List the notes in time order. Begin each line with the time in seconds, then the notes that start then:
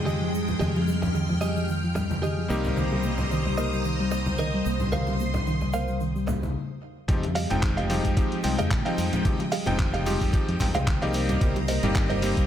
Already playing: F2 F3 G#3 C4 D#4 G5 D#6
0.05 D#3 G4 G#4 D#5, shaker
0.21 F3
0.33 G3, shaker
0.48 F3, low conga, shaker
0.59 F2 D#3 G4 G#4 D#5 F6, high conga, shaker
0.75 F3, high bongo
0.87 G3, shaker
1.02 F3, muted clean electric guitar stroke, high bongo, low conga, shaker
1.14 D#3, muted clean electric guitar stroke, shaker
1.29 F3, muted clean electric guitar stroke, high conga
1.41 G3 G4 G#4 D#5, shaker
1.56 F3, shaker
1.69 D#3, shaker
1.84 F3
1.95 G3, muted clean electric guitar stroke, high bongo, low conga, shaker
2.10 F3, muted clean electric guitar stroke, high conga, shaker
2.22 D#3 G4 G#4 D#5, shaker
2.38 F3
2.48 C2 G3 A#3 C4 D#4 G4 A#4 C5 D#5 A#5 D#6, shaker
2.65 G3, low conga, shaker
2.77 D#3, high conga, shaker
2.92 G3, high bongo
3.03 A#3, shaker
3.18 G3, muted clean electric guitar stroke, high bongo, low conga, shaker
3.30 D#3, muted clean electric guitar stroke, shaker
3.45 G3, muted clean electric guitar stroke, high conga
3.57 A#3 A#4 C5 D#5, shaker
3.73 G3, shaker
3.84 D#3, shaker
4.00 G3
4.11 A#3, muted clean electric guitar stroke, shaker
4.26 G3, muted clean electric guitar stroke, high conga, shaker
4.38 D#3 A#4 C5 D#5, shaker
4.54 G3
4.66 C2 A#3 C6, shaker
4.80 G3, low conga, shaker
4.92 D#3 A#4 C5 F5, high conga, shaker
5.07 G3, high bongo, shaker
5.20 A#3, shaker
5.34 G3, muted clean electric guitar stroke, high bongo, low conga, shaker
5.47 D#3, muted clean electric guitar stroke, shaker
5.61 G3, muted clean electric guitar stroke, high conga, shaker
5.73 A#3 A#4 C5 F5, shaker
5.88 G3, shaker
6.00 D#3, shaker
6.15 G3, shaker
6.27 A#3, muted clean electric guitar stroke, high bongo, low conga, shaker
6.42 D#4, muted clean electric guitar stroke, high conga, shaker
7.08 F2 D#3 F3 G#3 C4 D#4 G4 G5 D#6, kick, closed hi-hat, high conga, shaker
7.23 F3, closed hi-hat, high bongo
7.35 G3 G4 G#4 D#5 F5, open hi-hat, shaker
7.50 F1 F3 G#3 C4 D#4 G5, closed hi-hat, high bongo, low conga, shaker
7.63 D#3, muted clean electric guitar stroke, kick, clap, closed hi-hat, shaker
7.77 F3 G4 G#4 D#5 F5, closed hi-hat, high conga
7.89 F3 G3 G#3 C4 D#4 G4, open hi-hat, shaker
8.04 F2 F3, kick, closed hi-hat, shaker
8.17 D#3 F3 G#3 C4 D#4 G4, muted clean electric guitar stroke, kick, closed hi-hat, shaker
8.32 F3, closed hi-hat
8.43 C2 F3 G3 G#3 C4 D#4 G5, open hi-hat, shaker
8.59 F2 F3 G4 G#4 D#5 F5, closed hi-hat, high conga, shaker
8.71 A#2 D#3, kick, clap, closed hi-hat, shaker
8.85 F3 G#3 C4 D#4 G4 G#4 D#5 F5 G5, closed hi-hat
8.98 F2 G3, open hi-hat, shaker
9.13 F3, muted clean electric guitar stroke, closed hi-hat, low conga, shaker
9.25 F3 G#3 C4 D#4 G4, kick, closed hi-hat, high conga, shaker
9.40 F3, closed hi-hat, high bongo
9.52 G3 G4 G#4 D#5 F5, open hi-hat, shaker
9.66 F1 F3 G#3 C4 D#4 G5, closed hi-hat, high bongo, low conga, shaker
9.79 D#3, muted clean electric guitar stroke, kick, clap, closed hi-hat, shaker
9.93 F3 G4 G#4 D#5 F5, closed hi-hat, high conga
10.06 F3 G3 G#3 C4 D#4 G4, open hi-hat, shaker
10.21 F2 F3, kick, open hi-hat, shaker
10.33 D#3 F3 G#3 C4 D#4 G4, muted clean electric guitar stroke, kick, closed hi-hat, shaker
10.48 F2 F3, closed hi-hat
10.60 F2 F3 G3 G#3 C4 D#4 G5, kick, clap, open hi-hat, high bongo, low conga, shaker
10.74 C2 F3 G4 G#4 D#5 F5, closed hi-hat, high conga, shaker
10.87 D#3, kick, clap, closed hi-hat, shaker
11.02 C2 F3 G3 A#3 C4 D#4 G4 G#4 D#5 F5, closed hi-hat
11.13 A#3 G4 A#4 C5 D#5 A#5, open hi-hat, shaker
11.29 G3, closed hi-hat, low conga, shaker
11.41 C2 D#3 G3 A#3 C4 D#4 G4, kick, closed hi-hat, high conga, shaker
11.56 G3, closed hi-hat, high bongo
11.68 A#3 G4 A#4 C5 D#5, open hi-hat, shaker
11.83 G1 G3 A#3 C4 D#4 G4, closed hi-hat, high bongo, low conga, shaker
11.95 D#3, muted clean electric guitar stroke, kick, clap, closed hi-hat, shaker
12.10 G3 G4 A#4 C5 D#5, closed hi-hat, high conga
12.22 G3 A#3 C4 D#4 G4, open hi-hat, shaker
12.37 C2 G3, kick, closed hi-hat, shaker